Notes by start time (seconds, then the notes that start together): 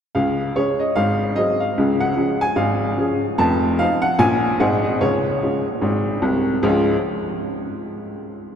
0.15 C#2 C#3 F5
0.56 G#3 C#4 G#4 C#5
0.80 D#5
0.96 G#1 G#2 F5
1.36 F#3 C4 G#4 D#5
1.60 F5
1.78 C#2 C#3
2.00 F#5
2.17 F3 C#4 G#4
2.41 G#5
2.56 G#1 G#2 F5
2.98 F3 C#4 G#4
3.38 F1 F2 A5
3.79 F3 C4 D#4 F5
4.02 F#5
4.19 A#1 A#2 F3 A#3 C#4 G#5
4.60 G#1 G#2 G#3 C4 D#4 F#5
4.85 D#5
5.01 C#2 C#3 C#5
5.42 G#3 C#4 F4
5.82 G#1 G#2
6.22 C2 C3
6.63 C#2 G#2 F3 G#3 C#4 F4